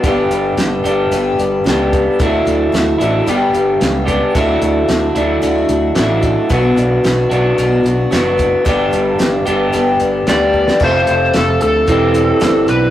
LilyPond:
<<
  \new Staff \with { instrumentName = "Electric slide guitar" } { \time 4/4 \key g \lydian \tempo 4 = 112 r1 | r1 | r1 | r1 |
r2. d''4 | c''4 a'8 a'2 b'8 | }
  \new Staff \with { instrumentName = "Tonewheel organ" } { \time 4/4 \key g \lydian r1 | r1 | r1 | r1 |
r1 | <f a c' f'>2 <g c' d' e'>2 | }
  \new Staff \with { instrumentName = "Twelve-string acoustic guitar" } { \time 4/4 \key g \lydian <g, d g b d' g'>8 <g b d' g'>8 <g b d' g'>8 <g b d' g'>8 <g, d g b d' g'>8 <g b d' g'>8 <g b d' g'>8 <g b d' g'>8 | <d e a d' fis'>8 <a d' fis'>8 <e a d' fis'>8 <a d' fis'>8 <g, d g b d' g'>8 <g b d' g'>8 <g b d' g'>8 <g b d' g'>8 | <d e a d' fis'>8 <a d' fis'>8 <e a d' fis'>8 <a d' fis'>8 <d e a d' fis'>8 <a d' fis'>8 <e a d' fis'>8 <a d' fis'>8 | <b, fis b d' fis'>8 <b d' fis'>8 <fis b d' fis'>8 <b d' fis'>8 <b, fis b d' fis'>8 <b d' fis'>8 <fis b d' fis'>8 <b d' fis'>8 |
<g, d g b d' g'>8 <g b d' g'>8 <g b d' g'>8 <g b d' g'>8 <g, d g b d' g'>8 <g b d' g'>8 <g b d' g'>8 <g b d' g'>8 | <f c' f' a'>8 <c' f' a'>8 <f c' f' a'>8 <c' f' a'>8 <e c' d' g'>8 <c' d' g'>8 <e c' d' g'>8 <c' d' g'>8 | }
  \new Staff \with { instrumentName = "Clean electric guitar" } { \time 4/4 \key g \lydian <g, d g b d' g'>4. <g, d g b d' g'>4. <g, d g b d' g'>4 | <d fis a d' e'>4. <d fis a d' e'>8 <g, d g b d' g'>4. <g, d g b d' g'>8 | <d fis a d' e'>4. <d fis a d' e'>4. <d fis a d' e'>4 | <b, fis b d' fis'>4. <b, fis b d' fis'>4. <b, fis b d' fis'>4 |
<g, d g b d' g'>4. <g, d g b d' g'>4. <g, d g b d' g'>4 | <f, c f a c' f'>2 <e c' d' g'>2 | }
  \new Staff \with { instrumentName = "Fingered electric bass" } { \clef bass \time 4/4 \key g \lydian g,,8 g,,8 g,,8 g,,8 g,,8 g,,8 cis,4 | d,8 d,8 d,8 a,,8 g,,8 g,,8 cis,4 | d,8 d,8 d,8 d,8 d,8 d,8 a,,4 | b,,8 b,,8 b,,8 b,,8 b,,8 b,,8 fis,,4 |
g,,8 g,,8 g,,8 g,,8 g,,8 g,,8 d,4 | f,,8 f,,8 f,,8 d,8 e,,4 g,,8 b,,8 | }
  \new DrumStaff \with { instrumentName = "Drums" } \drummode { \time 4/4 <hh bd>8 hh8 <hh sn>8 hh8 hh8 hh8 <hh sn>8 <hh bd>8 | <hh bd>8 hh8 <hh sn>8 hh8 hh8 hh8 <hh sn>8 <hh bd>8 | <hh bd>8 hh8 <hh sn>8 hh8 hh8 hh8 <hh sn>8 <hh bd>8 | <hh bd>8 hh8 <hh sn>8 hh8 hh8 hh8 <hh sn>8 <hh bd>8 |
<hh bd>8 hh8 <hh sn>8 hh8 hh8 hh8 <hh sn>8 bd16 sn16 | <cymc bd>8 hh8 <hh sn>8 hh8 <hh bd>8 hh8 <hh sn>8 hh8 | }
>>